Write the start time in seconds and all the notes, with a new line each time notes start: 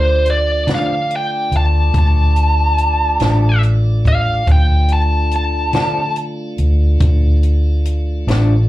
Already playing: D2 A3 D4 F4 C5 D5
0.26 closed hi-hat
0.30 D5
0.67 D3 F3 A3 D4, snare, closed hi-hat
0.75 F5
1.10 closed hi-hat
1.16 G5
1.52 D2, closed hi-hat
1.57 A5
1.94 D2, kick, closed hi-hat
1.99 A5
2.36 closed hi-hat
2.78 closed hi-hat
3.20 A1 D3 F3 A3 D4, snare, closed hi-hat
3.63 closed hi-hat
4.05 F5, kick, closed hi-hat
4.46 D2 A3 D4 F4, kick, closed hi-hat
4.52 G5
4.88 closed hi-hat
4.93 A5
5.31 closed hi-hat
5.36 A5
5.73 D3 F3 A3 D4, snare, closed hi-hat
6.16 closed hi-hat
6.58 D2, closed hi-hat
7.00 D2, kick, closed hi-hat
7.43 closed hi-hat
7.85 closed hi-hat
8.27 A1 D3 F3 A3 D4, snare, closed hi-hat